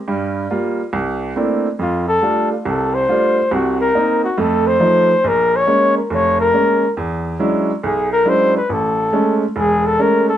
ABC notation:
X:1
M:4/4
L:1/8
Q:"Swing" 1/4=139
K:Cmix
V:1 name="Flugelhorn"
z8 | F A2 F A c3 | _G B2 G A c3 | B _d2 B d B3 |
z4 ^G B c =B | A3 z ^G A B A |]
V:2 name="Grand piano"
[G,,G,]2 [G,B,F] z C,,2 [A,B,CDE] z | F,,2 [G,A,DF] z [C,,C,]2 [G,A,DF] z | [C,,C,]2 [B,C_E] z [F,,A,]2 [F,A,E] z | B,,,2 [_A,B,_D] z F,,,2 [A,B,D] z |
E,,2 [^F,^G,^CDE] z =B,,,2 [F,G,CDE] z | A,,,2 [^G,A,^C] z E,,,2 [G,A,C] z |]